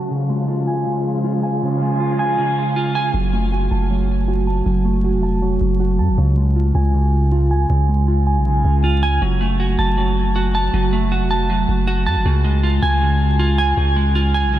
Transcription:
Already playing: clean electric guitar F#4 A5
0.10 clean electric guitar C#3, string section C#3 F3 G#3 F4
0.29 clean electric guitar G#3
0.48 clean electric guitar F4
0.67 clean electric guitar G#5
0.86 clean electric guitar C#3
1.24 clean electric guitar F4
1.43 clean electric guitar G#5
1.62 clean electric guitar C#3
1.81 clean electric guitar G#3
2.00 clean electric guitar F4
2.19 clean electric guitar G#5
2.38 clean electric guitar C#3
2.76 clean electric guitar F4
2.95 clean electric guitar G#5
3.14 808-style bass F#1, clean electric guitar F#3
3.33 clean electric guitar A3
3.52 clean electric guitar F#4
3.71 808-style bass F#1, clean electric guitar A5
3.90 clean electric guitar F#3
4.28 clean electric guitar F#4
4.47 clean electric guitar A5
4.66 808-style bass F#1, clean electric guitar F#3
4.85 clean electric guitar A3
5.04 clean electric guitar F#4
5.14 808-style bass F1
5.23 clean electric guitar A5
5.42 clean electric guitar F#3
5.61 808-style bass F#1
5.80 clean electric guitar F#4
5.99 808-style bass F#2, clean electric guitar A5
6.09 808-style bass F#1
6.18 808-style bass C#2, clean electric guitar C#3
6.37 clean electric guitar G#3
6.56 clean electric guitar F4
6.75 808-style bass C#2, clean electric guitar G#5
6.94 clean electric guitar C#3
7.32 clean electric guitar F4
7.51 clean electric guitar G#5
7.70 808-style bass C#2, clean electric guitar C#3
7.89 clean electric guitar G#3
8.08 clean electric guitar F4
8.27 clean electric guitar G#5
8.36 808-style bass B1
8.46 clean electric guitar C#3
8.65 808-style bass C#2
8.84 clean electric guitar F4
9.03 clean electric guitar G#5
9.22 808-style bass F#1, clean electric guitar F#3
9.41 clean electric guitar A3
9.60 clean electric guitar F#4
9.79 808-style bass F#1, clean electric guitar A5
9.98 clean electric guitar F#3
10.36 clean electric guitar F#4
10.55 clean electric guitar A5
10.74 808-style bass F#1, clean electric guitar F#3
10.93 clean electric guitar A3
11.12 clean electric guitar F#4
11.21 808-style bass F1
11.31 clean electric guitar A5
11.50 clean electric guitar F#3
11.69 808-style bass F#1
11.87 clean electric guitar F#4
12.06 808-style bass F#2, clean electric guitar A5
12.16 808-style bass F#1
12.26 808-style bass C#2, clean electric guitar C#3
12.44 clean electric guitar G#3
12.63 clean electric guitar F4
12.82 808-style bass C#2, clean electric guitar G#5
13.01 clean electric guitar C#3
13.39 clean electric guitar F4
13.58 clean electric guitar G#5
13.77 808-style bass C#2, clean electric guitar C#3
13.96 clean electric guitar G#3
14.15 clean electric guitar F4
14.34 clean electric guitar G#5
14.44 808-style bass B1
14.53 clean electric guitar C#3

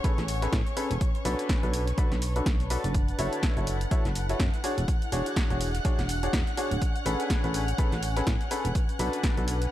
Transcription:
Already playing: ambient pad C#4 B4 G#5, violin section C#5 C#6
0.04 upright piano C#4 G#4 A4 B4, kick, closed hi-hat, shaker
0.18 fm bass A1, snare, closed hi-hat, shaker
0.28 closed hi-hat, open hi-hat, shaker
0.42 upright piano C#4 G#4 A4 B4, snare, closed hi-hat, shaker
0.53 fm bass A2, kick, snare, closed hi-hat, shaker
0.67 closed hi-hat, shaker
0.77 upright piano C#4 G#4 A4 B4, closed hi-hat, open hi-hat, shaker
0.91 fm bass E1, closed hi-hat, shaker
1.01 ambient pad D4, kick, closed hi-hat, shaker
1.15 closed hi-hat, shaker
1.25 fm bass B1, upright piano D4 F#4 A4 B4, closed hi-hat, open hi-hat, shaker
1.36 ambient pad A5, closed hi-hat, shaker
1.49 kick, snare, closed hi-hat, shaker
1.63 fm bass B1, upright piano D4 F#4 A4 B4, closed hi-hat, shaker
1.74 closed hi-hat, open hi-hat, shaker
1.87 snare, closed hi-hat, shaker
1.98 upright piano D4 F#4 A4 B4, kick, closed hi-hat, shaker
2.12 fm bass B1, snare, closed hi-hat, shaker
2.22 closed hi-hat, open hi-hat, shaker
2.36 upright piano D4 F#4 A4 B4, closed hi-hat, shaker
2.46 fm bass B1, kick, snare, closed hi-hat, shaker
2.60 closed hi-hat, shaker
2.70 upright piano D4 F#4 A4 B4, closed hi-hat, open hi-hat, shaker
2.84 fm bass F#1, closed hi-hat, shaker
2.94 ambient pad E4, violin section F#5 F#6, kick, closed hi-hat, shaker
3.08 closed hi-hat, shaker
3.19 fm bass F#1, upright piano E4 F#4 A4 C#5, closed hi-hat, open hi-hat, shaker
3.33 closed hi-hat, shaker
3.43 ambient pad A4, kick, snare, closed hi-hat, shaker
3.57 fm bass F#1, upright piano E4 F#4 A4 C#5, closed hi-hat, shaker
3.67 closed hi-hat, open hi-hat, shaker
3.71 ambient pad F#5
3.81 closed hi-hat, shaker
3.91 upright piano E4 F#4 A4 C#5, kick, closed hi-hat, shaker
4.05 fm bass F#1, snare, closed hi-hat, shaker
4.15 closed hi-hat, open hi-hat, shaker
4.29 upright piano E4 F#4 A4 C#5, snare, closed hi-hat, shaker
4.40 fm bass F#2, kick, snare, closed hi-hat, shaker
4.54 closed hi-hat, shaker
4.64 ambient pad D4, upright piano D4 F#4 G#4 C#5, closed hi-hat, open hi-hat, shaker
4.78 fm bass E1, closed hi-hat, shaker
4.88 kick, closed hi-hat, shaker
5.02 closed hi-hat, shaker
5.12 fm bass E1, upright piano D4 F#4 G#4 C#5, closed hi-hat, open hi-hat, shaker
5.26 closed hi-hat, shaker
5.34 ambient pad C#5, kick, snare, closed hi-hat, shaker
5.50 fm bass E1, upright piano D4 F#4 G#4 C#5, closed hi-hat, shaker
5.58 ambient pad G#5, closed hi-hat, open hi-hat, shaker
5.75 snare, closed hi-hat, shaker
5.85 upright piano D4 F#4 G#4 C#5, kick, closed hi-hat, shaker
5.99 fm bass E1, snare, closed hi-hat, shaker
6.09 closed hi-hat, open hi-hat, shaker
6.23 upright piano D4 F#4 G#4 C#5, closed hi-hat, shaker
6.33 fm bass E2, kick, snare, closed hi-hat, shaker
6.47 closed hi-hat, shaker
6.57 upright piano D4 F#4 G#4 C#5, closed hi-hat, open hi-hat, shaker
6.71 fm bass D1, closed hi-hat, shaker
6.82 ambient pad C#4, kick, closed hi-hat, shaker
6.96 closed hi-hat, shaker
7.06 fm bass A1, upright piano C#4 G#4 A4 B4, closed hi-hat, open hi-hat, shaker
7.20 closed hi-hat, shaker
7.30 kick, snare, closed hi-hat, shaker
7.44 fm bass A1, upright piano C#4 G#4 A4 B4, closed hi-hat, shaker
7.54 ambient pad B4, closed hi-hat, open hi-hat, shaker
7.68 closed hi-hat, shaker
7.78 upright piano C#4 G#4 A4 B4, kick, closed hi-hat, shaker
7.92 fm bass A1, snare, closed hi-hat, shaker
8.03 closed hi-hat, open hi-hat, shaker
8.16 upright piano C#4 G#4 A4 B4, snare, closed hi-hat, shaker
8.27 fm bass A2, kick, snare, closed hi-hat, shaker
8.41 closed hi-hat, shaker
8.51 upright piano C#4 G#4 A4 B4, closed hi-hat, open hi-hat, shaker
8.65 fm bass E1, closed hi-hat, shaker
8.75 ambient pad D4, kick, closed hi-hat, shaker
8.89 closed hi-hat, shaker
8.99 fm bass B1, upright piano D4 F#4 A4 B4, closed hi-hat, open hi-hat, shaker
9.13 closed hi-hat, shaker
9.23 kick, snare, closed hi-hat, shaker
9.37 fm bass B1, upright piano D4 F#4 A4 B4, closed hi-hat, shaker
9.48 closed hi-hat, open hi-hat, shaker
9.62 snare, closed hi-hat, shaker

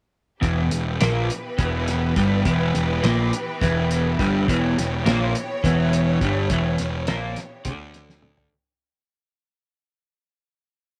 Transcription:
0.41 picked electric bass E1, clean electric guitar E2, string section E3 B3 G4 B4, kick, closed hi-hat
0.70 picked electric bass E1, clean electric guitar E2, closed hi-hat
1.01 picked electric bass A#1, clean electric guitar A#2, snare, closed hi-hat
1.30 closed hi-hat
1.58 picked electric bass E1, clean electric guitar E2, kick, closed hi-hat
1.88 snare, closed hi-hat
2.16 picked electric bass G1, clean electric guitar G2, kick, closed hi-hat
2.45 picked electric bass E1, clean electric guitar E2, kick, closed hi-hat
2.75 picked electric bass E1, clean electric guitar E2, closed hi-hat
3.03 picked electric bass A#1, clean electric guitar A#2, snare, closed hi-hat
3.33 closed hi-hat
3.62 picked electric bass E1, clean electric guitar E2, kick, snare, closed hi-hat
3.91 closed hi-hat
4.19 picked electric bass G1, clean electric guitar G2, kick, closed hi-hat
4.46 picked electric bass E1, clean electric guitar E2, string section C#5, kick, closed hi-hat
4.78 picked electric bass E1, clean electric guitar E2, snare, closed hi-hat
5.06 picked electric bass A#1, clean electric guitar A#2, snare, closed hi-hat
5.35 closed hi-hat
5.64 picked electric bass E1, clean electric guitar E2, kick, snare, closed hi-hat
5.93 closed hi-hat
6.21 picked electric bass G1, clean electric guitar G2, kick, closed hi-hat
6.50 picked electric bass E1, clean electric guitar E2, kick, closed hi-hat
6.78 picked electric bass E1, clean electric guitar E2, snare, closed hi-hat
7.07 picked electric bass A#1, clean electric guitar A#2, snare, closed hi-hat
7.36 snare, closed hi-hat
7.65 picked electric bass D2, clean electric guitar D3, kick, closed hi-hat
7.94 snare, closed hi-hat
8.10 snare
8.22 mid tom
8.37 floor tom

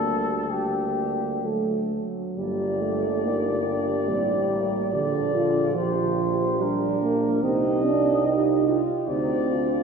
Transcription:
Already playing: tuba D2, euphonium G3, trombone section A#3, french horn section G4, cornet A4
0.49 euphonium G3, trombone section A#3, french horn section G4, cornet G4
1.42 euphonium F#3, trombone section A3, french horn section A4
1.91 euphonium F#3
2.37 tuba G1, euphonium G3, french horn section A#3, trombone section G4, cornet D5
2.81 euphonium A3
3.24 euphonium A#3, french horn section D#4, trombone section G4
3.67 french horn section D4
4.08 tuba A1, euphonium G3, french horn section C4
4.51 french horn section A#3
4.93 tuba A#1, euphonium D3, french horn section D4, trombone section G4, cornet D5
5.34 french horn section F4, trombone section F4
5.75 euphonium F3, french horn section G4, trombone section G4, cornet C5
6.60 euphonium G3, french horn section D4, trombone section G4, cornet A#4
7.02 euphonium A#3
7.42 tuba C2, euphonium C4, french horn section D#4, trombone section G4, cornet D#5
7.84 euphonium D4
8.26 euphonium D#4, trombone section F4, french horn section G4
8.67 french horn section F4, trombone section G4
9.08 tuba D2, euphonium C4, french horn section D#4, trombone section G4, cornet D5
9.50 french horn section D4, trombone section F4

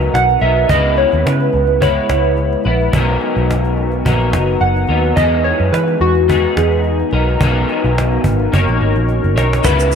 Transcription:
Already playing: clean electric guitar F#3 B3 D#4 A#4, ambient pad B3 D#4 F#4 A#4
0.01 cajon slap
0.14 picked electric bass B1, synth keys F#5, cajon slap
0.29 cajon slap
0.40 picked electric bass B1, clean electric guitar F#3 B3 D#4 A#4, synth keys E5, cajon slap
0.57 cajon slap
0.69 picked electric bass C#2, clean electric guitar C#3 G#3 B3 E4 B4, ambient pad C#3 G#3 B3 E4, synth keys D#5, cajon bass
0.97 synth keys C#5, cajon slap
1.12 picked electric bass D#2, cajon slap
1.26 picked electric bass C#3, synth keys B4, cajon slap
1.40 cajon slap
1.53 picked electric bass C#2, cajon slap
1.67 cajon slap
1.81 clean electric guitar G#3 B3 E4 B4, synth keys C#5, cajon bass
1.96 cajon slap
2.09 picked electric bass C#2, synth keys C#5, cajon slap
2.25 cajon slap
2.37 cajon slap
2.53 cajon slap
2.64 picked electric bass A#1, clean electric guitar B3 E4 B4, cajon slap
2.81 cajon slap
2.92 picked electric bass B1, clean electric guitar B2 D#3 F#3 B3 D#4 A#4, ambient pad B3 D#4 F#4 A#4, cajon bass
3.09 cajon slap
3.21 cajon slap
3.37 picked electric bass B1, cajon slap
3.51 cajon slap
3.64 cajon slap
3.77 cajon slap
3.92 cajon slap
4.05 picked electric bass A#1, clean electric guitar F#3 B3 D#4 A#4, cajon bass
4.20 cajon slap
4.33 picked electric bass F#1, cajon slap
4.48 cajon slap
4.60 picked electric bass F#1, synth keys F#5, cajon slap
4.76 cajon slap
4.87 picked electric bass D#2, clean electric guitar F#3 B3 D#4 A#4, cajon slap
5.05 cajon slap
5.16 picked electric bass E2, clean electric guitar E3 G#3 B3 D#4 G#4, ambient pad E3 G#3, synth keys D#5, cajon bass
5.32 cajon slap
5.44 synth keys C#5, cajon slap
5.60 picked electric bass F#2, cajon slap
5.72 picked electric bass E3, synth keys B4, cajon slap
5.88 cajon slap
6.00 picked electric bass E2, synth keys F#4, cajon slap
6.15 cajon slap
6.28 clean electric guitar G#3 B3 D#4 G#4, cajon bass
6.43 cajon slap
6.56 picked electric bass E2, synth keys G#4, cajon slap
6.72 cajon slap
6.84 cajon slap
7.00 cajon slap
7.11 picked electric bass B1, clean electric guitar F#3 B3 D#4 A#4, ambient pad B3 F#4 A#4, cajon slap
7.28 cajon slap
7.40 picked electric bass B1, clean electric guitar B2 D#3 F#3 B3 D#4 A#4, cajon bass
7.56 cajon slap
7.68 cajon slap
7.84 picked electric bass B1, cajon slap
7.98 cajon slap
8.24 picked electric bass G#1, cajon bass
8.39 cajon slap
8.52 picked electric bass F#1, clean electric guitar A#3 D#4 A#4 C#5, ambient pad C#4, cajon bass
8.67 picked electric bass A#1, cajon slap
8.81 picked electric bass G#1, cajon slap
8.96 picked electric bass A#1, cajon slap
9.08 cajon slap
9.24 picked electric bass F#1, cajon slap
9.36 picked electric bass B1, clean electric guitar D#4 A#4 C#5, cajon slap
9.53 cajon slap
9.63 picked electric bass C#2, clean electric guitar C#3 G#3 B3 E4 B4, ambient pad C#3 G#3 B3 E4, synth keys B4, cajon bass, shaker
9.80 shaker
9.92 shaker

